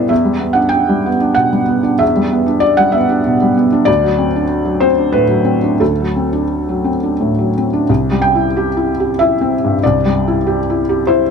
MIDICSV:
0, 0, Header, 1, 2, 480
1, 0, Start_track
1, 0, Tempo, 636943
1, 78, Time_signature, 3, 2, 24, 8
1, 1518, Tempo, 622407
1, 3918, Tempo, 690449
1, 5838, Tempo, 637620
1, 8409, End_track
2, 0, Start_track
2, 0, Title_t, "Felt piano"
2, 0, Program_c, 0, 0
2, 0, Control_c, 0, 64, 127
2, 0, Note_on_c, 0, 40, 50
2, 0, Note_on_c, 0, 47, 37
2, 0, Note_on_c, 0, 55, 36
2, 0, Note_on_c, 0, 59, 35
2, 0, Note_on_c, 0, 64, 37
2, 0, Note_on_c, 0, 67, 52
2, 0, Note_on_c, 0, 69, 55
2, 0, Note_on_c, 0, 71, 65
2, 0, Note_on_c, 0, 72, 57
2, 0, Note_on_c, 0, 74, 59
2, 67, Note_on_c, 0, 76, 59
2, 78, Note_off_c, 0, 40, 0
2, 78, Note_on_c, 0, 40, 52
2, 92, Control_c, 0, 64, 0
2, 93, Note_off_c, 0, 74, 0
2, 94, Note_off_c, 0, 59, 0
2, 94, Note_off_c, 0, 64, 0
2, 96, Note_off_c, 0, 55, 0
2, 96, Note_off_c, 0, 69, 0
2, 96, Note_off_c, 0, 71, 0
2, 97, Note_off_c, 0, 67, 0
2, 97, Note_off_c, 0, 72, 0
2, 99, Note_off_c, 0, 47, 0
2, 187, Note_on_c, 0, 55, 37
2, 239, Control_c, 0, 64, 127
2, 302, Note_on_c, 0, 59, 38
2, 382, Note_off_c, 0, 55, 0
2, 400, Note_on_c, 0, 78, 68
2, 413, Note_on_c, 0, 62, 42
2, 429, Note_off_c, 0, 76, 0
2, 499, Note_off_c, 0, 59, 0
2, 518, Note_on_c, 0, 79, 80
2, 537, Note_off_c, 0, 78, 0
2, 673, Note_on_c, 0, 55, 40
2, 799, Note_on_c, 0, 59, 38
2, 810, Note_off_c, 0, 62, 0
2, 868, Note_off_c, 0, 55, 0
2, 913, Note_on_c, 0, 62, 37
2, 993, Note_off_c, 0, 59, 0
2, 1014, Note_on_c, 0, 78, 76
2, 1021, Note_off_c, 0, 79, 0
2, 1024, Note_on_c, 0, 47, 41
2, 1110, Note_off_c, 0, 62, 0
2, 1146, Note_on_c, 0, 55, 38
2, 1225, Note_off_c, 0, 47, 0
2, 1268, Note_on_c, 0, 59, 41
2, 1345, Note_off_c, 0, 55, 0
2, 1380, Note_on_c, 0, 62, 46
2, 1465, Note_off_c, 0, 59, 0
2, 1489, Note_off_c, 0, 40, 0
2, 1497, Note_on_c, 0, 76, 76
2, 1506, Note_off_c, 0, 78, 0
2, 1509, Note_on_c, 0, 40, 52
2, 1531, Control_c, 0, 64, 0
2, 1582, Note_off_c, 0, 62, 0
2, 1633, Note_on_c, 0, 55, 42
2, 1661, Control_c, 0, 64, 127
2, 1758, Note_on_c, 0, 59, 44
2, 1830, Note_off_c, 0, 55, 0
2, 1864, Note_on_c, 0, 62, 45
2, 1952, Note_off_c, 0, 59, 0
2, 1971, Note_on_c, 0, 74, 81
2, 1990, Note_off_c, 0, 76, 0
2, 2102, Note_on_c, 0, 78, 81
2, 2106, Note_off_c, 0, 74, 0
2, 2112, Note_on_c, 0, 55, 43
2, 2216, Note_on_c, 0, 76, 70
2, 2230, Note_off_c, 0, 78, 0
2, 2232, Note_on_c, 0, 59, 47
2, 2255, Note_off_c, 0, 62, 0
2, 2307, Note_off_c, 0, 55, 0
2, 2355, Note_on_c, 0, 62, 44
2, 2426, Note_off_c, 0, 59, 0
2, 2483, Note_on_c, 0, 47, 45
2, 2546, Note_off_c, 0, 62, 0
2, 2603, Note_on_c, 0, 55, 47
2, 2670, Note_off_c, 0, 47, 0
2, 2702, Note_off_c, 0, 76, 0
2, 2719, Note_on_c, 0, 59, 43
2, 2789, Note_off_c, 0, 55, 0
2, 2836, Note_on_c, 0, 62, 53
2, 2906, Note_off_c, 0, 59, 0
2, 2914, Note_off_c, 0, 40, 0
2, 2936, Note_on_c, 0, 74, 91
2, 2951, Note_on_c, 0, 38, 61
2, 2952, Note_off_c, 0, 62, 0
2, 2961, Control_c, 0, 64, 0
2, 3078, Note_on_c, 0, 54, 47
2, 3080, Control_c, 0, 64, 127
2, 3190, Note_on_c, 0, 60, 43
2, 3261, Note_off_c, 0, 54, 0
2, 3326, Note_on_c, 0, 62, 45
2, 3377, Note_off_c, 0, 60, 0
2, 3553, Note_on_c, 0, 54, 43
2, 3660, Note_off_c, 0, 74, 0
2, 3670, Note_on_c, 0, 72, 76
2, 3680, Note_on_c, 0, 60, 46
2, 3704, Note_off_c, 0, 62, 0
2, 3746, Note_off_c, 0, 54, 0
2, 3803, Note_on_c, 0, 62, 36
2, 3874, Note_off_c, 0, 60, 0
2, 3916, Note_on_c, 0, 71, 78
2, 3919, Note_off_c, 0, 72, 0
2, 3925, Note_on_c, 0, 45, 42
2, 3991, Note_off_c, 0, 62, 0
2, 4030, Note_on_c, 0, 54, 41
2, 4105, Note_off_c, 0, 45, 0
2, 4141, Note_on_c, 0, 60, 38
2, 4218, Note_off_c, 0, 54, 0
2, 4271, Note_on_c, 0, 62, 41
2, 4336, Note_off_c, 0, 60, 0
2, 4361, Note_off_c, 0, 38, 0
2, 4387, Note_off_c, 0, 71, 0
2, 4388, Note_on_c, 0, 69, 57
2, 4393, Note_on_c, 0, 38, 49
2, 4402, Control_c, 0, 64, 0
2, 4464, Note_off_c, 0, 62, 0
2, 4527, Note_on_c, 0, 54, 36
2, 4544, Control_c, 0, 64, 127
2, 4638, Note_on_c, 0, 60, 35
2, 4713, Note_off_c, 0, 54, 0
2, 4754, Note_on_c, 0, 62, 38
2, 4829, Note_off_c, 0, 60, 0
2, 5003, Note_on_c, 0, 54, 34
2, 5112, Note_on_c, 0, 60, 38
2, 5140, Note_off_c, 0, 62, 0
2, 5192, Note_off_c, 0, 54, 0
2, 5242, Note_on_c, 0, 62, 35
2, 5306, Note_off_c, 0, 60, 0
2, 5364, Note_on_c, 0, 45, 35
2, 5432, Note_off_c, 0, 62, 0
2, 5489, Note_on_c, 0, 54, 38
2, 5555, Note_off_c, 0, 45, 0
2, 5600, Note_off_c, 0, 69, 0
2, 5620, Note_on_c, 0, 60, 34
2, 5678, Note_off_c, 0, 54, 0
2, 5730, Note_on_c, 0, 62, 39
2, 5801, Note_off_c, 0, 60, 0
2, 5812, Note_off_c, 0, 38, 0
2, 5842, Note_off_c, 0, 62, 0
2, 5842, Note_on_c, 0, 36, 52
2, 5852, Control_c, 0, 64, 0
2, 5981, Control_c, 0, 64, 127
2, 6009, Note_on_c, 0, 55, 46
2, 6085, Note_on_c, 0, 79, 77
2, 6187, Note_on_c, 0, 64, 43
2, 6269, Note_off_c, 0, 55, 0
2, 6349, Note_on_c, 0, 67, 50
2, 6439, Note_off_c, 0, 64, 0
2, 6500, Note_on_c, 0, 64, 42
2, 6599, Note_off_c, 0, 67, 0
2, 6675, Note_on_c, 0, 67, 46
2, 6754, Note_off_c, 0, 64, 0
2, 6814, Note_off_c, 0, 79, 0
2, 6818, Note_on_c, 0, 76, 79
2, 6829, Note_on_c, 0, 64, 48
2, 6920, Note_off_c, 0, 67, 0
2, 6985, Note_on_c, 0, 60, 46
2, 7077, Note_off_c, 0, 64, 0
2, 7159, Note_on_c, 0, 43, 41
2, 7233, Note_off_c, 0, 60, 0
2, 7263, Note_off_c, 0, 36, 0
2, 7292, Note_off_c, 0, 76, 0
2, 7303, Note_on_c, 0, 74, 75
2, 7304, Control_c, 0, 64, 0
2, 7321, Note_on_c, 0, 36, 54
2, 7398, Note_off_c, 0, 43, 0
2, 7445, Control_c, 0, 64, 127
2, 7469, Note_on_c, 0, 55, 46
2, 7636, Note_on_c, 0, 64, 48
2, 7712, Note_off_c, 0, 55, 0
2, 7778, Note_on_c, 0, 67, 50
2, 7875, Note_off_c, 0, 64, 0
2, 7953, Note_on_c, 0, 64, 46
2, 8025, Note_off_c, 0, 67, 0
2, 8099, Note_on_c, 0, 67, 51
2, 8191, Note_off_c, 0, 64, 0
2, 8234, Note_on_c, 0, 72, 70
2, 8241, Note_on_c, 0, 64, 54
2, 8246, Note_off_c, 0, 74, 0
2, 8344, Note_off_c, 0, 67, 0
2, 8409, Note_off_c, 0, 36, 0
2, 8409, Note_off_c, 0, 64, 0
2, 8409, Note_off_c, 0, 72, 0
2, 8409, End_track
0, 0, End_of_file